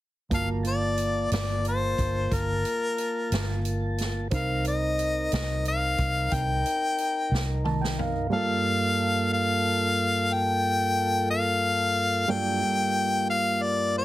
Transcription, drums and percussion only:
0.31 kick, closed hi-hat
0.65 closed hi-hat
0.98 closed hi-hat
1.31 snare, closed hi-hat
1.65 closed hi-hat
1.98 kick, closed hi-hat
2.32 kick, closed hi-hat
2.65 closed hi-hat
2.98 closed hi-hat
3.32 snare, closed hi-hat
3.65 closed hi-hat
3.98 snare, closed hi-hat
4.31 kick, closed hi-hat
4.65 closed hi-hat
4.99 closed hi-hat
5.32 snare, closed hi-hat
5.65 closed hi-hat
5.98 kick, closed hi-hat
6.31 kick, closed hi-hat
6.66 closed hi-hat
6.98 closed hi-hat
7.34 snare
7.65 mid tom
7.84 snare
7.99 floor tom

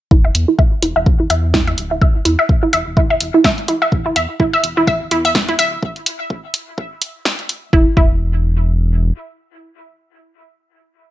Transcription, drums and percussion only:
0.11 kick
0.35 closed hi-hat
0.59 kick
0.82 closed hi-hat
1.06 kick
1.30 closed hi-hat
1.54 kick, snare
1.68 closed hi-hat
1.78 closed hi-hat
2.02 kick
2.25 closed hi-hat
2.49 kick
2.73 closed hi-hat
2.97 kick
3.21 closed hi-hat
3.44 kick, snare
3.58 closed hi-hat
3.68 closed hi-hat
3.92 kick
4.16 closed hi-hat
4.40 kick
4.64 closed hi-hat
4.87 kick
5.11 closed hi-hat
5.35 kick, snare
5.49 closed hi-hat
5.59 closed hi-hat
5.83 kick
5.96 closed hi-hat
6.06 closed hi-hat
6.30 kick
6.54 closed hi-hat
6.78 kick
7.02 closed hi-hat
7.25 kick, snare
7.39 closed hi-hat
7.49 closed hi-hat
7.73 kick
7.97 kick

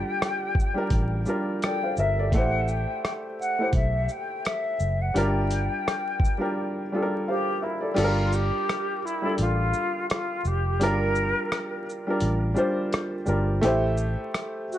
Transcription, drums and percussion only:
0.22 cross-stick, closed hi-hat
0.55 kick
0.60 shaker
0.90 kick, closed hi-hat
1.26 shaker
1.62 cross-stick, closed hi-hat
1.97 shaker
2.32 kick, closed hi-hat
2.68 shaker
3.05 cross-stick, closed hi-hat
3.42 shaker
3.73 kick, closed hi-hat
4.09 shaker
4.45 cross-stick, closed hi-hat
4.80 shaker
5.16 closed hi-hat
5.51 closed hi-hat, shaker
5.88 cross-stick, closed hi-hat
6.20 kick
6.25 shaker
7.96 closed hi-hat, crash
8.33 shaker
8.69 cross-stick, closed hi-hat
9.07 shaker
9.38 closed hi-hat
9.74 shaker
10.10 cross-stick, closed hi-hat
10.45 shaker
10.81 closed hi-hat
11.15 shaker
11.52 cross-stick, closed hi-hat
11.89 shaker
12.20 closed hi-hat
12.56 shaker
12.93 cross-stick, closed hi-hat
13.26 shaker
13.63 closed hi-hat
13.97 shaker
14.34 cross-stick, closed hi-hat
14.72 shaker

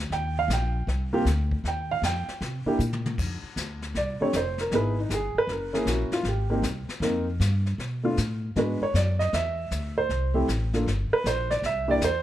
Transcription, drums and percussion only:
0.12 brush sweep, snare
0.50 snare, hi-hat pedal
0.88 brush sweep, snare
1.26 snare, hi-hat pedal
1.51 kick
1.65 brush sweep, snare
2.03 snare, hi-hat pedal
2.28 snare
2.41 brush sweep, snare
2.80 hi-hat pedal
2.93 mid tom
3.06 mid tom
3.18 brush sweep, kick, snare, crash
3.57 snare, hi-hat pedal
3.82 snare
3.95 brush sweep, snare
4.33 snare, hi-hat pedal
4.58 snare
4.71 brush sweep, snare
5.10 snare, hi-hat pedal
5.49 brush sweep, snare
5.74 snare
5.87 snare, hi-hat pedal
6.12 snare
6.24 brush sweep, snare
6.63 snare, hi-hat pedal
6.89 snare
7.02 brush sweep, snare
7.40 snare, hi-hat pedal
7.66 snare
7.79 brush sweep, snare
8.17 snare, hi-hat pedal
8.56 brush sweep, snare
8.95 snare, hi-hat pedal
9.20 snare
9.33 brush sweep, snare
9.71 snare, hi-hat pedal
10.10 brush sweep, snare
10.49 snare, hi-hat pedal
10.73 snare
10.87 brush sweep, snare
11.26 snare, hi-hat pedal
11.51 snare
11.63 brush sweep, snare
12.01 snare, hi-hat pedal

